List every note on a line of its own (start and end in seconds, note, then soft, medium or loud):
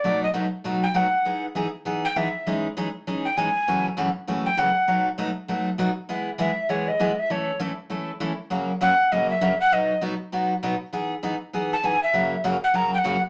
0.00 0.24 B2 medium
0.00 0.23 D5 medium
0.04 0.24 F#3 medium
0.04 0.24 A3 medium
0.04 0.24 D#4 medium
0.04 0.25 F#4 medium
0.23 0.30 D#5 medium
0.34 0.45 B2 medium
0.34 0.45 F#3 medium
0.34 0.45 A3 medium
0.34 0.45 D#4 medium
0.34 0.45 F#4 medium
0.64 0.84 B2 medium
0.64 0.85 F#3 medium
0.64 0.85 A3 medium
0.64 0.85 D#4 medium
0.64 0.85 F#4 medium
0.83 0.98 G5 loud
0.94 1.05 B2 medium
0.94 1.06 F#3 medium
0.94 1.06 A3 medium
0.94 1.06 D#4 medium
0.94 1.06 F#4 medium
0.94 1.45 F#5 medium
1.25 1.45 E3 medium
1.25 1.45 B3 medium
1.25 1.46 D#4 medium
1.25 1.46 G#4 medium
1.55 1.66 E3 medium
1.55 1.67 B3 medium
1.55 1.67 D#4 medium
1.55 1.67 G#4 medium
1.85 2.06 E3 medium
1.85 2.06 B3 medium
1.85 2.06 D#4 medium
1.85 2.06 G#4 medium
2.05 2.18 G5 loud
2.16 2.27 E3 medium
2.16 2.27 B3 medium
2.16 2.27 D#4 medium
2.16 2.27 G#4 medium
2.16 2.65 E5 medium
2.46 2.66 E3 medium
2.46 2.66 G#3 medium
2.46 2.67 C#4 medium
2.46 2.67 D#4 medium
2.46 2.67 G#4 medium
2.77 2.88 E3 medium
2.77 2.88 G#3 medium
2.77 2.88 C#4 medium
2.77 2.88 D#4 medium
2.77 2.88 G#4 medium
3.07 3.27 E3 medium
3.07 3.27 G#3 medium
3.07 3.27 C#4 medium
3.07 3.27 D#4 medium
3.07 3.27 G#4 medium
3.25 3.39 G5 medium
3.37 3.48 E3 medium
3.37 3.48 G#3 medium
3.37 3.48 C#4 medium
3.37 3.48 D#4 medium
3.37 3.49 G#4 medium
3.37 3.86 G#5 loud
3.68 3.87 F#2 medium
3.68 3.88 C#3 medium
3.68 3.88 E3 medium
3.68 3.88 A3 medium
3.68 3.88 C#4 medium
3.68 3.88 F#4 medium
3.97 4.08 F#2 medium
3.97 4.08 C#3 medium
3.97 4.08 E3 medium
3.97 4.09 A3 medium
3.97 4.09 C#4 medium
3.97 4.09 F#4 medium
4.27 4.48 F#2 medium
4.27 4.48 C#3 medium
4.27 4.48 E3 medium
4.27 4.48 A3 medium
4.27 4.48 C#4 medium
4.27 4.48 F#4 medium
4.46 4.60 G5 loud
4.57 4.69 F#2 medium
4.57 4.69 C#3 medium
4.57 4.69 E3 medium
4.57 4.69 A3 medium
4.57 4.69 C#4 medium
4.57 4.69 F#4 medium
4.57 5.07 F#5 medium
4.88 5.08 B2 medium
4.88 5.08 F#3 medium
4.88 5.08 A3 medium
4.88 5.08 D#4 medium
4.88 5.08 F#4 medium
5.18 5.29 B2 medium
5.18 5.29 F#3 medium
5.18 5.29 A3 medium
5.18 5.30 D#4 medium
5.18 5.30 F#4 medium
5.48 5.69 B2 medium
5.48 5.69 F#3 medium
5.48 5.69 A3 medium
5.48 5.69 D#4 medium
5.48 5.69 F#4 medium
5.78 5.90 B2 medium
5.78 5.90 F#3 medium
5.78 5.90 A3 medium
5.78 5.90 D#4 medium
5.78 5.90 F#4 medium
6.09 6.29 E3 medium
6.09 6.29 G#3 medium
6.09 6.29 B3 medium
6.09 6.29 E4 medium
6.09 6.29 G#4 medium
6.38 6.50 E3 medium
6.38 6.50 G#3 medium
6.38 6.50 B3 medium
6.38 6.50 E4 medium
6.38 6.50 G#4 medium
6.38 6.71 E5 medium
6.69 6.89 E3 medium
6.69 6.90 G#3 medium
6.69 6.90 B3 medium
6.69 6.90 E4 medium
6.69 6.90 G#4 medium
6.69 6.90 C#5 medium
6.88 7.21 D#5 medium
6.99 7.11 E3 medium
6.99 7.11 G#3 medium
6.99 7.11 B3 medium
6.99 7.11 E4 medium
6.99 7.11 G#4 medium
7.19 7.33 E5 medium
7.30 7.50 E3 medium
7.30 7.50 A3 medium
7.30 7.50 C#4 medium
7.30 7.50 E4 medium
7.30 7.51 A4 medium
7.30 7.61 C#5 medium
7.59 7.71 E3 medium
7.59 7.71 A3 medium
7.59 7.71 C#4 medium
7.59 7.71 E4 medium
7.59 7.71 A4 medium
7.90 8.10 E3 medium
7.90 8.11 A3 medium
7.90 8.11 C#4 medium
7.90 8.11 E4 medium
7.90 8.11 A4 medium
8.20 8.32 E3 medium
8.20 8.32 A3 medium
8.20 8.32 C#4 medium
8.20 8.32 E4 medium
8.20 8.32 A4 medium
8.50 8.71 F#2 medium
8.50 8.71 C#3 medium
8.50 8.71 F#3 medium
8.50 8.71 A#3 medium
8.50 8.71 C#4 medium
8.50 8.71 F#4 medium
8.81 8.92 F#2 medium
8.81 8.92 C#3 medium
8.81 8.92 F#3 medium
8.81 8.92 A#3 medium
8.81 8.92 C#4 medium
8.81 8.93 F#4 medium
8.81 9.14 F#5 loud
9.11 9.32 F#2 medium
9.11 9.32 C#3 medium
9.11 9.32 F#3 medium
9.11 9.32 A#3 medium
9.11 9.32 C#4 medium
9.11 9.32 F#4 medium
9.11 9.30 D#5 medium
9.30 9.58 E5 loud
9.41 9.53 F#2 medium
9.41 9.53 C#3 medium
9.41 9.53 F#3 medium
9.41 9.53 A#3 medium
9.41 9.53 C#4 medium
9.41 9.53 F#4 medium
9.60 9.75 F#5 loud
9.72 9.92 B2 medium
9.72 9.92 F#3 medium
9.72 9.92 B3 medium
9.72 9.92 D#4 medium
9.72 9.93 F#4 medium
9.72 10.03 D#5 medium
10.01 10.13 B2 medium
10.01 10.13 F#3 medium
10.01 10.13 B3 medium
10.01 10.13 D#4 medium
10.01 10.14 F#4 medium
10.32 10.53 B2 medium
10.32 10.53 F#3 medium
10.32 10.53 B3 medium
10.32 10.53 D#4 medium
10.32 10.53 F#4 medium
10.63 10.74 B2 medium
10.63 10.74 F#3 medium
10.63 10.74 B3 medium
10.63 10.74 D#4 medium
10.63 10.74 F#4 medium
10.93 11.13 E3 medium
10.93 11.13 B3 medium
10.93 11.13 D#4 medium
10.93 11.14 G#4 medium
11.23 11.34 E3 medium
11.23 11.34 B3 medium
11.23 11.34 D#4 medium
11.23 11.35 G#4 medium
11.53 11.74 E3 medium
11.53 11.74 B3 medium
11.53 11.74 D#4 medium
11.53 11.74 G#4 medium
11.73 11.87 A5 loud
11.83 11.95 E3 medium
11.83 11.95 B3 medium
11.83 11.95 D#4 medium
11.83 11.95 G#4 medium
11.83 12.03 G#5 medium
12.03 12.42 E5 loud
12.13 12.34 F#2 medium
12.13 12.34 C#3 medium
12.13 12.34 F#3 medium
12.13 12.34 A#3 medium
12.13 12.35 C#4 medium
12.13 12.34 F#4 medium
12.44 12.55 F#2 medium
12.44 12.55 C#3 medium
12.44 12.56 F#3 medium
12.44 12.56 A#3 medium
12.44 12.56 C#4 medium
12.44 12.56 F#4 medium
12.64 12.77 F#5 loud
12.74 12.95 F#2 medium
12.74 12.95 C#3 medium
12.74 12.95 F#3 medium
12.74 12.95 A#3 medium
12.74 12.95 C#4 medium
12.74 12.95 F#4 medium
12.74 12.93 A#5 loud
12.94 12.99 G5 loud
12.98 13.22 F#5 loud
13.04 13.16 F#2 medium
13.04 13.16 C#3 medium
13.04 13.16 F#3 medium
13.04 13.16 A#3 medium
13.04 13.16 C#4 medium
13.04 13.16 F#4 medium